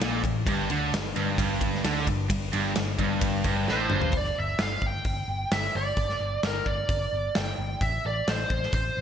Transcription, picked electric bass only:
0, 0, Header, 1, 2, 480
1, 0, Start_track
1, 0, Tempo, 459418
1, 487, Time_signature, 4, 2, 24, 8
1, 9417, End_track
2, 0, Start_track
2, 0, Title_t, "Picked electric bass"
2, 0, Program_c, 0, 34
2, 0, Note_on_c, 0, 34, 100
2, 224, Note_off_c, 0, 34, 0
2, 246, Note_on_c, 0, 33, 92
2, 470, Note_off_c, 0, 33, 0
2, 489, Note_on_c, 0, 31, 101
2, 711, Note_off_c, 0, 31, 0
2, 719, Note_on_c, 0, 38, 84
2, 946, Note_off_c, 0, 38, 0
2, 971, Note_on_c, 0, 31, 71
2, 1191, Note_off_c, 0, 31, 0
2, 1211, Note_on_c, 0, 31, 93
2, 1432, Note_off_c, 0, 31, 0
2, 1445, Note_on_c, 0, 31, 101
2, 1891, Note_off_c, 0, 31, 0
2, 1923, Note_on_c, 0, 38, 97
2, 2147, Note_off_c, 0, 38, 0
2, 2167, Note_on_c, 0, 31, 87
2, 2389, Note_off_c, 0, 31, 0
2, 2402, Note_on_c, 0, 31, 78
2, 2626, Note_off_c, 0, 31, 0
2, 2648, Note_on_c, 0, 31, 91
2, 2870, Note_off_c, 0, 31, 0
2, 2883, Note_on_c, 0, 31, 72
2, 3107, Note_off_c, 0, 31, 0
2, 3121, Note_on_c, 0, 31, 84
2, 3569, Note_off_c, 0, 31, 0
2, 3606, Note_on_c, 0, 31, 89
2, 3828, Note_off_c, 0, 31, 0
2, 3850, Note_on_c, 0, 33, 91
2, 4071, Note_off_c, 0, 33, 0
2, 4091, Note_on_c, 0, 31, 97
2, 4311, Note_off_c, 0, 31, 0
2, 4317, Note_on_c, 0, 31, 83
2, 4486, Note_off_c, 0, 31, 0
2, 4578, Note_on_c, 0, 31, 80
2, 4739, Note_off_c, 0, 31, 0
2, 4803, Note_on_c, 0, 31, 66
2, 4970, Note_off_c, 0, 31, 0
2, 5034, Note_on_c, 0, 31, 76
2, 5204, Note_off_c, 0, 31, 0
2, 5274, Note_on_c, 0, 31, 74
2, 5444, Note_off_c, 0, 31, 0
2, 5514, Note_on_c, 0, 31, 78
2, 5684, Note_off_c, 0, 31, 0
2, 5761, Note_on_c, 0, 31, 81
2, 5929, Note_off_c, 0, 31, 0
2, 6009, Note_on_c, 0, 31, 82
2, 6174, Note_off_c, 0, 31, 0
2, 6237, Note_on_c, 0, 31, 92
2, 6406, Note_off_c, 0, 31, 0
2, 6481, Note_on_c, 0, 31, 72
2, 6649, Note_off_c, 0, 31, 0
2, 6721, Note_on_c, 0, 31, 69
2, 6889, Note_off_c, 0, 31, 0
2, 6957, Note_on_c, 0, 31, 75
2, 7126, Note_off_c, 0, 31, 0
2, 7201, Note_on_c, 0, 31, 80
2, 7369, Note_off_c, 0, 31, 0
2, 7445, Note_on_c, 0, 31, 74
2, 7611, Note_off_c, 0, 31, 0
2, 7686, Note_on_c, 0, 31, 78
2, 7852, Note_off_c, 0, 31, 0
2, 7923, Note_on_c, 0, 31, 90
2, 8090, Note_off_c, 0, 31, 0
2, 8164, Note_on_c, 0, 33, 93
2, 8331, Note_off_c, 0, 33, 0
2, 8409, Note_on_c, 0, 33, 85
2, 8574, Note_off_c, 0, 33, 0
2, 8647, Note_on_c, 0, 33, 76
2, 8813, Note_off_c, 0, 33, 0
2, 8883, Note_on_c, 0, 33, 83
2, 9051, Note_off_c, 0, 33, 0
2, 9121, Note_on_c, 0, 33, 88
2, 9289, Note_off_c, 0, 33, 0
2, 9371, Note_on_c, 0, 33, 85
2, 9417, Note_off_c, 0, 33, 0
2, 9417, End_track
0, 0, End_of_file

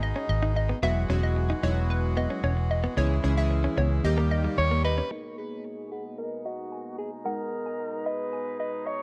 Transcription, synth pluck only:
0, 0, Header, 1, 2, 480
1, 0, Start_track
1, 0, Key_signature, 5, "minor"
1, 0, Tempo, 535714
1, 743, Time_signature, 4, 2, 24, 8
1, 8086, End_track
2, 0, Start_track
2, 0, Title_t, "Synth pluck"
2, 0, Program_c, 0, 84
2, 25, Note_on_c, 0, 75, 81
2, 118, Note_off_c, 0, 75, 0
2, 262, Note_on_c, 0, 75, 89
2, 356, Note_off_c, 0, 75, 0
2, 506, Note_on_c, 0, 75, 78
2, 598, Note_off_c, 0, 75, 0
2, 744, Note_on_c, 0, 76, 106
2, 930, Note_off_c, 0, 76, 0
2, 1105, Note_on_c, 0, 75, 78
2, 1197, Note_off_c, 0, 75, 0
2, 1465, Note_on_c, 0, 73, 84
2, 1651, Note_off_c, 0, 73, 0
2, 1704, Note_on_c, 0, 71, 94
2, 1890, Note_off_c, 0, 71, 0
2, 1946, Note_on_c, 0, 75, 83
2, 2038, Note_off_c, 0, 75, 0
2, 2184, Note_on_c, 0, 73, 81
2, 2277, Note_off_c, 0, 73, 0
2, 2427, Note_on_c, 0, 75, 82
2, 2518, Note_off_c, 0, 75, 0
2, 2666, Note_on_c, 0, 73, 108
2, 2852, Note_off_c, 0, 73, 0
2, 3024, Note_on_c, 0, 76, 75
2, 3117, Note_off_c, 0, 76, 0
2, 3385, Note_on_c, 0, 73, 91
2, 3571, Note_off_c, 0, 73, 0
2, 3625, Note_on_c, 0, 75, 83
2, 3811, Note_off_c, 0, 75, 0
2, 3865, Note_on_c, 0, 75, 76
2, 3957, Note_off_c, 0, 75, 0
2, 4105, Note_on_c, 0, 73, 76
2, 4198, Note_off_c, 0, 73, 0
2, 4345, Note_on_c, 0, 75, 83
2, 4437, Note_off_c, 0, 75, 0
2, 4583, Note_on_c, 0, 75, 94
2, 4769, Note_off_c, 0, 75, 0
2, 4941, Note_on_c, 0, 73, 79
2, 5035, Note_off_c, 0, 73, 0
2, 5301, Note_on_c, 0, 78, 83
2, 5489, Note_off_c, 0, 78, 0
2, 5542, Note_on_c, 0, 75, 74
2, 5729, Note_off_c, 0, 75, 0
2, 5784, Note_on_c, 0, 75, 76
2, 5877, Note_off_c, 0, 75, 0
2, 6022, Note_on_c, 0, 80, 80
2, 6116, Note_off_c, 0, 80, 0
2, 6262, Note_on_c, 0, 80, 73
2, 6356, Note_off_c, 0, 80, 0
2, 6501, Note_on_c, 0, 78, 99
2, 6688, Note_off_c, 0, 78, 0
2, 6863, Note_on_c, 0, 80, 81
2, 6957, Note_off_c, 0, 80, 0
2, 7224, Note_on_c, 0, 75, 86
2, 7410, Note_off_c, 0, 75, 0
2, 7463, Note_on_c, 0, 80, 79
2, 7650, Note_off_c, 0, 80, 0
2, 7705, Note_on_c, 0, 75, 76
2, 7797, Note_off_c, 0, 75, 0
2, 7944, Note_on_c, 0, 75, 76
2, 8037, Note_off_c, 0, 75, 0
2, 8086, End_track
0, 0, End_of_file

